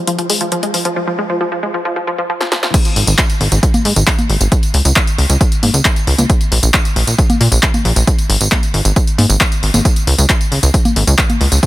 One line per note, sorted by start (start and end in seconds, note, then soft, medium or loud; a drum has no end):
0.07 0.13 F3 medium
0.07 closed hi-hat medium
0.19 0.24 F3 medium
0.19 closed hi-hat medium
0.30 0.38 G#3 medium
0.30 open hi-hat loud
0.41 0.46 F3 medium
0.41 closed hi-hat soft
0.52 0.57 F3 medium
0.52 closed hi-hat medium
0.63 0.71 G#3 medium
0.63 closed hi-hat medium
0.74 0.79 F3 medium
0.74 open hi-hat loud
0.85 0.90 F3 medium
0.85 closed hi-hat soft
0.96 1.02 F3 medium
1.07 1.13 F3 medium
1.18 1.26 G#3 medium
1.30 1.35 F3 medium
1.41 1.46 F3 medium
1.52 1.57 F3 medium
1.63 1.71 G#3 medium
1.74 1.79 F3 medium
1.85 1.90 F3 medium
1.96 2.02 F3 medium
2.07 2.13 F3 medium
2.18 2.24 F3 medium
2.30 2.35 F3 medium
2.41 2.46 F3 medium
2.41 snare medium
2.52 2.57 F3 medium
2.52 snare medium
2.63 2.68 F3 medium
2.63 snare medium
2.74 kick loud
2.74 closed hi-hat medium
2.74 crash loud
2.74 tambourine soft
2.85 closed hi-hat medium
2.85 tambourine soft
2.96 3.04 G#1 loud
2.96 open hi-hat loud
3.07 3.15 G#1 medium
3.07 closed hi-hat medium
3.07 tambourine medium
3.18 kick loud
3.18 clap loud
3.18 closed hi-hat medium
3.18 tambourine soft
3.30 closed hi-hat medium
3.30 tambourine soft
3.41 3.48 G#1 medium
3.41 open hi-hat loud
3.52 3.59 G#1 medium
3.52 closed hi-hat medium
3.52 tambourine medium
3.63 kick loud
3.63 closed hi-hat medium
3.63 tambourine soft
3.74 closed hi-hat medium
3.74 tambourine soft
3.74 high conga medium
3.85 3.93 G#2 loud
3.85 open hi-hat loud
3.96 4.04 G#1 medium
3.96 closed hi-hat medium
3.96 tambourine medium
4.07 kick loud
4.07 clap loud
4.07 closed hi-hat medium
4.07 tambourine medium
4.19 closed hi-hat medium
4.19 tambourine soft
4.19 high conga medium
4.30 4.37 G#1 loud
4.30 open hi-hat loud
4.41 4.48 G#1 medium
4.41 closed hi-hat medium
4.41 tambourine medium
4.52 kick loud
4.52 closed hi-hat medium
4.52 tambourine soft
4.63 closed hi-hat medium
4.63 tambourine soft
4.74 4.81 C#2 loud
4.74 open hi-hat loud
4.85 4.93 C#2 medium
4.85 closed hi-hat medium
4.85 tambourine medium
4.96 kick loud
4.96 clap loud
4.96 closed hi-hat medium
4.96 tambourine soft
5.07 closed hi-hat medium
5.07 tambourine soft
5.18 5.26 C#2 medium
5.18 open hi-hat loud
5.29 5.37 C#2 medium
5.29 closed hi-hat medium
5.29 tambourine medium
5.41 kick loud
5.41 closed hi-hat medium
5.41 tambourine soft
5.52 closed hi-hat medium
5.52 tambourine soft
5.63 5.70 G#1 loud
5.63 open hi-hat loud
5.63 high conga medium
5.74 5.81 C#2 medium
5.74 closed hi-hat medium
5.74 tambourine medium
5.85 kick loud
5.85 clap loud
5.85 closed hi-hat medium
5.85 tambourine medium
5.96 closed hi-hat medium
5.96 tambourine soft
6.07 6.15 C#2 medium
6.07 open hi-hat loud
6.18 6.26 C#2 medium
6.18 closed hi-hat medium
6.18 tambourine medium
6.18 high conga medium
6.30 kick loud
6.30 closed hi-hat medium
6.30 tambourine medium
6.41 closed hi-hat medium
6.41 tambourine soft
6.52 6.59 A#1 loud
6.52 open hi-hat loud
6.63 6.70 A#1 medium
6.63 closed hi-hat medium
6.63 tambourine medium
6.74 kick loud
6.74 clap loud
6.74 closed hi-hat medium
6.74 tambourine medium
6.85 closed hi-hat medium
6.85 tambourine soft
6.96 7.04 A#1 medium
6.96 open hi-hat loud
7.07 7.15 A#1 medium
7.07 closed hi-hat medium
7.07 tambourine medium
7.18 kick loud
7.18 closed hi-hat medium
7.18 tambourine medium
7.30 closed hi-hat medium
7.30 tambourine soft
7.30 high conga medium
7.41 7.48 A#2 loud
7.41 open hi-hat loud
7.52 7.59 A#1 medium
7.52 closed hi-hat medium
7.52 tambourine medium
7.63 kick loud
7.63 clap loud
7.63 closed hi-hat medium
7.63 tambourine medium
7.74 closed hi-hat soft
7.74 tambourine soft
7.74 high conga medium
7.85 7.92 A#1 loud
7.85 open hi-hat loud
7.96 8.04 A#1 medium
7.96 closed hi-hat medium
7.96 tambourine medium
8.07 kick loud
8.07 closed hi-hat medium
8.07 tambourine medium
8.19 closed hi-hat soft
8.19 tambourine soft
8.30 8.37 G#1 loud
8.30 open hi-hat loud
8.41 8.48 G#1 medium
8.41 tambourine medium
8.52 kick loud
8.52 clap loud
8.52 closed hi-hat medium
8.52 tambourine medium
8.52 high conga medium
8.63 closed hi-hat medium
8.63 tambourine soft
8.74 8.81 G#1 medium
8.74 open hi-hat loud
8.85 8.92 G#1 medium
8.85 closed hi-hat medium
8.85 tambourine medium
8.96 kick loud
8.96 closed hi-hat medium
8.96 tambourine medium
9.07 closed hi-hat medium
9.07 tambourine soft
9.18 9.26 G#2 loud
9.18 open hi-hat loud
9.18 high conga medium
9.29 9.37 G#1 medium
9.29 closed hi-hat medium
9.29 tambourine medium
9.41 kick loud
9.41 clap loud
9.41 closed hi-hat medium
9.41 tambourine medium
9.52 closed hi-hat soft
9.52 tambourine soft
9.63 9.70 G#1 loud
9.63 open hi-hat loud
9.74 9.81 G#1 medium
9.74 closed hi-hat soft
9.74 tambourine medium
9.74 high conga medium
9.85 kick loud
9.85 closed hi-hat medium
9.85 tambourine medium
9.96 closed hi-hat medium
9.96 tambourine soft
10.07 10.15 C#2 loud
10.07 open hi-hat loud
10.18 10.26 C#2 medium
10.18 closed hi-hat medium
10.18 tambourine medium
10.30 kick loud
10.30 clap loud
10.30 closed hi-hat medium
10.30 tambourine medium
10.41 closed hi-hat soft
10.41 tambourine soft
10.52 10.59 C#2 medium
10.52 open hi-hat loud
10.63 10.70 C#2 medium
10.63 closed hi-hat medium
10.63 tambourine medium
10.74 kick loud
10.74 closed hi-hat medium
10.74 tambourine medium
10.85 closed hi-hat medium
10.85 tambourine soft
10.85 high conga medium
10.96 11.04 G#1 loud
10.96 open hi-hat loud
11.07 11.15 C#2 medium
11.07 closed hi-hat medium
11.07 tambourine medium
11.18 kick loud
11.18 clap loud
11.18 closed hi-hat medium
11.18 tambourine medium
11.30 closed hi-hat soft
11.30 tambourine soft
11.30 high conga medium
11.41 11.48 C#2 medium
11.41 open hi-hat loud
11.52 11.59 C#2 medium
11.52 closed hi-hat soft
11.52 tambourine medium
11.63 kick loud
11.63 closed hi-hat medium
11.63 tambourine medium